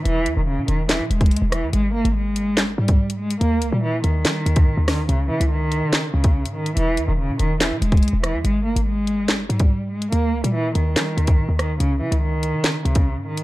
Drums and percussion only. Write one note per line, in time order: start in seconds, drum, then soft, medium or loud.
0.05 closed hi-hat medium
0.26 closed hi-hat medium
0.68 closed hi-hat medium
0.89 snare loud
0.89 clap loud
0.89 closed hi-hat medium
1.11 closed hi-hat medium
1.21 kick loud
1.21 closed hi-hat soft
1.26 closed hi-hat medium
1.31 closed hi-hat medium
1.36 closed hi-hat medium
1.52 cross-stick loud
1.52 closed hi-hat medium
1.73 closed hi-hat medium
2.05 closed hi-hat medium
2.36 closed hi-hat medium
2.57 snare loud
2.57 clap loud
2.88 kick loud
2.88 closed hi-hat medium
3.10 closed hi-hat medium
3.31 closed hi-hat medium
3.41 closed hi-hat medium
3.62 closed hi-hat medium
4.04 closed hi-hat medium
4.25 snare loud
4.25 clap loud
4.25 closed hi-hat medium
4.46 closed hi-hat medium
4.56 kick medium
4.56 closed hi-hat medium
4.88 cross-stick loud
4.88 snare medium
4.88 open hi-hat medium
5.09 closed hi-hat medium
5.41 closed hi-hat medium
5.72 closed hi-hat medium
5.93 snare loud
5.93 clap loud
6.24 kick loud
6.24 closed hi-hat medium
6.46 closed hi-hat medium
6.66 closed hi-hat medium
6.77 closed hi-hat medium
6.97 closed hi-hat medium
7.39 closed hi-hat medium
7.61 snare loud
7.61 clap loud
7.61 closed hi-hat medium
7.82 closed hi-hat medium
7.92 kick loud
7.92 closed hi-hat soft
7.97 closed hi-hat medium
8.03 closed hi-hat medium
8.08 closed hi-hat medium
8.24 cross-stick loud
8.24 closed hi-hat medium
8.45 closed hi-hat medium
8.76 closed hi-hat medium
9.07 closed hi-hat medium
9.28 snare loud
9.28 clap loud
9.50 closed hi-hat medium
9.60 kick loud
9.60 closed hi-hat medium
10.02 closed hi-hat medium
10.12 closed hi-hat medium
10.44 closed hi-hat medium
10.75 closed hi-hat medium
10.96 snare loud
10.96 clap loud
10.96 closed hi-hat medium
11.18 closed hi-hat medium
11.27 kick medium
11.27 closed hi-hat medium
11.59 cross-stick loud
11.59 closed hi-hat medium
11.80 closed hi-hat medium
12.12 closed hi-hat medium
12.43 closed hi-hat medium
12.64 snare loud
12.64 clap loud
12.86 closed hi-hat medium
12.95 kick medium
12.95 closed hi-hat medium
13.37 closed hi-hat medium